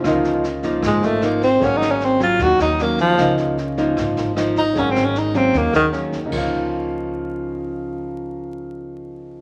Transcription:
<<
  \new Staff \with { instrumentName = "Grand piano" } { \time 4/4 \key des \major \tempo 4 = 153 <des' f' bes' ees''>2~ <des' f' bes' ees''>8 <des' f' bes' ees''>4. | <des' aes' bes' ges''>1 | <des' f' bes' ees''>1 | <des' aes' bes' ges''>2~ <des' aes' bes' ges''>8 <des' aes' bes' ges''>4. |
<ees' bes' des'' f''>1~ | <ees' bes' des'' f''>1 | }
  \new Staff \with { instrumentName = "Tenor saxophone" } { \time 4/4 \key des \major r2 aes8 a8 bes8 c'8 | \tuplet 3/2 { des'8 ees'8 des'8 } c'8 f'8 ges'8 ees'8 bes8 f8~ | f8 r2. ees'8 | \tuplet 3/2 { des'8 c'8 des'8 } ees'8 c'8 bes8 ees8 r4 |
r1 | r1 | }
  \new Staff \with { instrumentName = "Nylon-string guitar" } { \time 4/4 \key des \major << { <f bes ees'>4 r8 <f bes ees'>4. <f bes ees'>8 r8 | <ges bes des'>4. <ges bes des'>4. <ges bes des'>4 | <f bes ees'>4 r8 <f bes ees'>4. <f bes ees'>8 r8 | <ges bes des'>4 r8 <ges bes des'>4. <ges bes des'>8 r8 |
<des f bes ees'>1~ | <des f bes ees'>1 | } \\ { des2 aes,2 | aes,2 ees2 | des2 aes,2 | aes,2 ees2 |
r1 | r1 | } >> }
  \new Staff \with { instrumentName = "Upright bass" } { \clef bass \time 4/4 \key des \major des,2 aes,,8 aes,,4. | aes,,2 ees,8 ees,4. | des,2 aes,,8 aes,,4. | aes,,2 ees,8 ees,4. |
des,1~ | des,1 | }
  \new DrumStaff \with { instrumentName = "Drums" } \drummode { \time 4/4 <bd ss sn>8 sn8 sn8 <bd sn>8 <bd ss sn>8 sn8 <ss sn>8 <bd sn>8 | <bd sn>8 <ss sn>8 sn8 <bd sn>8 <bd sn>8 <ss sn>8 sn8 <bd sn>8 | <bd ss sn>8 sn8 sn8 <bd sn>8 <bd ss sn>8 sn8 <ss sn>8 <bd sn>8 | <bd sn>8 <ss sn>8 sn8 <bd sn>8 <bd sn>8 <ss sn>8 sn8 <bd sn>8 |
<cymc bd>4 r4 r4 r4 | r4 r4 r4 r4 | }
>>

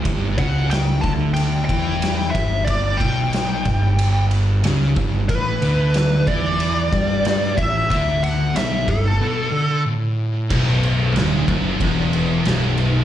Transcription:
<<
  \new Staff \with { instrumentName = "Lead electric guitar" } { \time 4/4 \key b \minor \tempo 4 = 92 r8 fis''8 g''8 a''8 g''8 g''4 e''8 | d''8 g''2 r4. | b'4. d''2 e''8 | e''8 fis''8 e''8 a'4. r4 |
r1 | }
  \new Staff \with { instrumentName = "Distorted electric guitar" } { \clef bass \time 4/4 \key b \minor g,8 cis4 d4 e4 g,8~ | g,8 b,4 g,4. cis8 g,8 | a,8 d4 e4 g4 a,8 | d4 b,8 g,8 b,8 d8 a,4 |
b,,4 d,8 fis,8 e,4 b,,4 | }
  \new Staff \with { instrumentName = "Distorted electric guitar" } { \clef bass \time 4/4 \key b \minor g,8 cis4 d4 e4 g,8~ | g,8 b,4 g,4. cis8 g,8 | a,8 d4 e4 g4 a,8 | d4 b,8 g,8 b,8 d8 a,4 |
b,,4 d,8 fis,8 e,4 b,,4 | }
  \new Staff \with { instrumentName = "Distorted electric guitar" } { \clef bass \time 4/4 \key b \minor r1 | r1 | r1 | r1 |
b,,4 d,8 fis,8 e,4 b,,4 | }
  \new Staff \with { instrumentName = "Fingered electric bass" } { \clef bass \time 4/4 \key b \minor g,,8 cis,4 d,4 e,4 g,,8~ | g,,8 b,,4 g,,4. cis,8 g,,8 | a,,8 d,4 e,4 g,4 a,,8 | d,4 b,,8 g,,8 r2 |
b,,,4 d,,8 fis,,8 e,,4 b,,,4 | }
  \new DrumStaff \with { instrumentName = "Drums" } \drummode { \time 4/4 <bd cymr>8 <bd cymr>8 <cymr sn>8 <bd cymr>8 cymr8 <bd cymr>8 <cymr sn>16 sn16 <bd cymr>8 | <bd cymr>8 <bd cymr>8 <cymr sn>8 <bd cymr>8 cymr8 cymr8 <cymr sn>16 sn16 <bd cymr>8 | <bd cymr>8 cymr8 <cymr sn>8 <bd cymr>8 cymr8 <bd cymr>8 <cymr sn>16 sn16 <bd cymr>8 | <bd cymr>8 cymr8 <cymr sn>8 <bd cymr>8 r4 r4 |
<cymc bd>8 cymc8 <cymc sn>8 <cymc bd>8 <cymc bd>8 cymc8 <cymc sn>8 cymc8 | }
>>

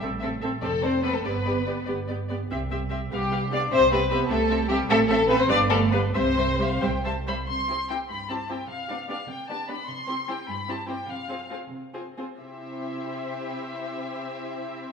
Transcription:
<<
  \new Staff \with { instrumentName = "Violin section" } { \time 6/8 \key c \major \tempo 4. = 97 r8 e''8 e''8 d''8 d''8 d''8 | d''8 d''8 d''8 d''8 d''8 d''8 | e''8 e''8 e''8 f''8 f''8 f''8 | e''8 e''8 e''8 e''8 e''8 e''8 |
e''8 e''8 e''8 f''8 f''8 f''8 | e''8 e''8 <e'' f''>8 <e'' g''>8 <e'' a''>8 <e'' b''>8 | c'''4 g''8 b''8 a''8 g''8 | f''4 f''8 g''8 a''8 b''8 |
c'''4 g''8 b''8 a''8 g''8 | f''4 r2 | e''2.~ | e''2. | }
  \new Staff \with { instrumentName = "Violin section" } { \time 6/8 \key c \major r4. a'8 c''8 b'16 a'16 | b'4. r4. | r4. g'4 d''8 | c''8 b'8 b'8 a'4 g'8 |
a'8 a'8 b'16 c''16 d''8 a'8 b'8 | c''4. r4. | r8 <g' c''>8 <g' c''>8 r8 <g' c''>8 <g' c''>8 | r8 <g' d''>8 <g' d''>8 r8 <g' d''>8 <g' d''>8 |
r8 <g' c''>8 <g' c''>8 r8 <g' c''>8 <g' c''>8 | r8 <aes' c''>8 <aes' c''>8 r8 <aes' c''>8 <aes' c''>8 | <g' c''>2.~ | <g' c''>2. | }
  \new Staff \with { instrumentName = "Viola section" } { \time 6/8 \key c \major <c' a'>8 <c' a'>8 <c' a'>8 <c' a'>8 <c' a'>8 <c' a'>8 | <b g'>8 <b g'>8 <b g'>8 <b g'>8 <b g'>8 <b g'>8 | <c' g'>8 <c' g'>8 <c' g'>8 <b g'>8 <b g'>8 <b g'>8 | <c' g'>8 <c' g'>8 <c' g'>8 <c' g'>8 <c' g'>8 <c' g'>8 |
<c' a'>8 <c' a'>8 <c' a'>8 <g b'>8 <g b'>8 <g b'>8 | <g c''>8 <g c''>8 <g c''>8 <g c''>8 <g c''>8 <g c''>8 | r8 <c' e'>8 <c' e'>8 r8 <c' e'>8 <c' e'>8 | r8 <b d'>8 <b d'>8 r8 <b d'>8 <b d'>8 |
r8 <c' e'>8 <c' e'>8 r8 <c' e'>8 <c' e'>8 | r8 <c' f'>8 <c' f'>8 r8 <c' f'>8 <c' f'>8 | <c' e'>2.~ | <c' e'>2. | }
  \new Staff \with { instrumentName = "Cello section" } { \time 6/8 \key c \major r4. a8 c'8 b16 a16 | b4. r4. | r4. g4 d'8 | c'8 b8 b8 a4 g8 |
a8 a8 b16 c'16 d'8 a8 b8 | c'4. r4. | c4. g,4. | c4. c4. |
c4. g,4. | c4. c4. | c2.~ | c2. | }
  \new Staff \with { instrumentName = "Double bass section" } { \clef bass \time 6/8 \key c \major a,,4. f,,4. | g,,4. g,,4. | c,4. c,4. | c,4. c,4. |
a,,4. g,,4. | c,4. c,4. | r2. | r2. |
r2. | r2. | r2. | r2. | }
>>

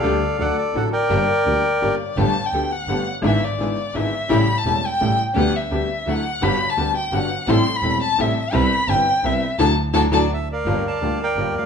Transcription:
<<
  \new Staff \with { instrumentName = "Violin" } { \time 3/4 \key g \minor \tempo 4 = 169 r2. | r2 d''4 | \key g \major a''8. g''8. fis''4 r8 | e''8 d''4. e''4 |
b''8. a''8. g''4 r8 | fis''8 e''4. fis''4 | b''8. a''8. g''8 fis''4 | c'''8. b''8. a''8 e''4 |
b''4 g''4 e''4 | a''8 r8 a''8 a''8 r4 | \key g \minor r2. | }
  \new Staff \with { instrumentName = "Bandoneon" } { \time 3/4 \key g \minor << { f''4 fis''8 d''8 fis''8 g''8~ | g''2~ g''8 r8 | \key g \major r2. | r2. |
r2. | r2. | r2. | r2. |
r2. | r4. d''8 e''8 f''8~ | \key g \minor f''8 a''4 g''4 f''8 | } \\ { <a' d''>4 <a' d''>4. <bes' d''>8~ | <bes' d''>2~ <bes' d''>8 r8 | r2. | r2. |
r2. | r2. | r2. | r2. |
r2. | r2 r8 <bes' d''>8~ | <bes' d''>8 <d'' f''>4 <bes' d''>4. | } >> }
  \new Staff \with { instrumentName = "String section" } { \time 3/4 \key g \minor <d' g' a'>8 r8 <d' fis' a'>8 r8 <d' fis' a'>8 r8 | <d' g' bes'>8 r8 <d' g' bes'>8 r8 <d' g' bes'>8 r8 | \key g \major <b g' a'>8 r8 <b g' a'>8 r8 <b g' a'>8 r8 | <d' e' gis'>8 r8 <d' e' gis'>8 r8 <d' e' gis'>8 r8 |
<a cis' g'>8 r8 <a cis' g'>8 r8 <a cis' g'>8 r8 | <b d' g'>8 r8 <b d' g'>8 r8 <d' e' fis'>8 r8 | <b fis' g'>8 r8 <b fis' g'>8 r8 <b fis' g'>8 r8 | <c' g' a'>8 r8 <c' g' a'>8 r8 <c' g' a'>8 r8 |
<c' e' b'>8 r8 <c' e' b'>8 r8 <c' e' b'>8 r8 | <d' fis' a'>8 r8 <d' fis' a'>8 <d' fis' a'>8 r4 | \key g \minor <f' g' bes'>8 r8 <f' g' bes'>8 r8 <f' g' bes'>8 r8 | }
  \new Staff \with { instrumentName = "Upright piano" } { \clef bass \time 3/4 \key g \minor <d, d g a g'>8 r8 <d, d fis a fis'>8 r8 <a,, a, d fis a fis'>8 r8 | <g,, g, d g bes g'>8 r8 <d, d g bes g'>8 r8 <g,, g, d g bes g'>8 r8 | \key g \major <g,, g, d a b g'>8 r8 <d, d a b g'>8 r8 <g,, g, d a b g'>8 r8 | <gis,, gis, d gis b e'>8 r8 <gis,, gis, d gis b e'>8 r8 <gis,, gis, d gis b e'>8 r8 |
<a,, a, cis g a e'>8 r8 <e,, e, cis g a e'>8 r8 <a,, a, cis g a e'>8 r8 | <d, d g b g'>8 r8 <d, d g b g'>8 r8 <d, d fis a e'>8 r8 | <g,, g, d g b fis'>8 r8 <d, d g b fis'>8 r8 <g,, g, d g b fis'>8 r8 | <a,, a, c g a e'>8 r8 <e,, e, c g a e'>8 r8 <a,, a, c g a e'>8 r8 |
<c, c g b e'>8 r8 <g,, g, c g b e'>8 r8 <c, c g b e'>8 r8 | <a, d fis>8 r8 <a, d fis>8 <a, d fis>8 r4 | \key g \minor <g,, g, d g bes f'>8 r8 <d, d g bes f'>8 r8 <g,, g, d g bes f'>8 r32 d,32 r16 | }
  \new Staff \with { instrumentName = "Double bass" } { \clef bass \time 3/4 \key g \minor d,8 r8 d,8 r8 a,,8 r8 | g,,8 r8 d,8 r8 g,,8 r8 | \key g \major g,,8 r8 d,8 r8 g,,8 r8 | gis,,8 r8 gis,,8 r8 gis,,8 r8 |
a,,8 r8 e,,8 r8 a,,8 r8 | d,8 r8 d,8 r8 d,8 r8 | g,,8 r8 d,8 r8 g,,8 r8 | a,,8 r8 e,,8 r8 a,,8 r8 |
c,8 r8 g,,8 r8 c,8 r8 | d,8 r8 d,8 d,8 r4 | \key g \minor g,,8 r8 d,8 r8 g,,8 ees,8 | }
>>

